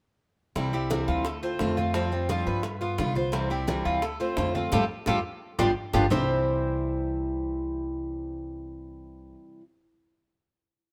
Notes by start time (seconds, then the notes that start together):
0.55 C2 C3 E3 G3 C4 E4, high bongo, high conga
0.73 G3 C4 E4 G4, high conga
0.90 C3 E3 G3 C4 E4, high bongo, high conga
1.08 D2 F4, high conga
1.25 A4, muted steel-string acoustic guitar stroke, high bongo, high conga
1.43 A3 C4 F4 C5, high conga
1.59 F2 D3 A3 C4 F4, high bongo, low bongo, high conga
1.77 A3 C4 F4, high conga
1.94 F3 G3 C4 F4, high bongo
2.12 G3 C4 F4, high conga
2.29 F3 G3 C4 F4, high bongo, high conga
2.47 G2 B4, high bongo, high conga
2.63 muted steel-string acoustic guitar stroke, high bongo, high conga
2.81 B3 F4, high bongo, high conga
2.98 C2 G3 B3 F4, high bongo, low bongo, high conga
3.15 B3 F4 C5, high bongo, high conga
3.32 C3 E3 G3 C4 E4, high bongo, high conga
3.50 G3 C4 E4 G4, high conga
3.67 C3 E3 G3 C4 E4, high bongo, high conga
3.85 D2 F4, high conga
4.02 A4, muted steel-string acoustic guitar stroke, high bongo, high conga
4.20 A3 C4 F4 C5, high conga
4.37 F2 D3 A3 C4 F4, high bongo, low bongo, high conga
4.55 A3 C4 F4, high conga
4.72 F2 G3 A3 C4 F4 G4 A4, high bongo, low conga
5.06 F2 G3 A3 C4 F4 G4 A4, high bongo, low conga
5.59 G1 G3 B3 D4 F4 G4, high bongo, low conga
5.93 G1 G3 B3 D4 F4 G4, high bongo, low conga
6.10 C2 C3 E3 G3 C4 E4 G4 C5, low bongo, low conga